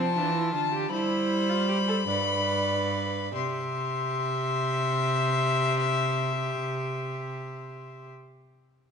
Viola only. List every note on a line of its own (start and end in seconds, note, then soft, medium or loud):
0.17 0.35 D4 medium
0.35 0.53 E4 medium
0.54 0.72 F4 medium
0.73 0.91 G4 medium
0.92 1.51 E4 loud
1.49 1.68 F4 medium
1.68 1.76 G4 medium
1.88 1.96 A4 medium
2.08 3.33 B4 loud
3.35 8.09 G4 medium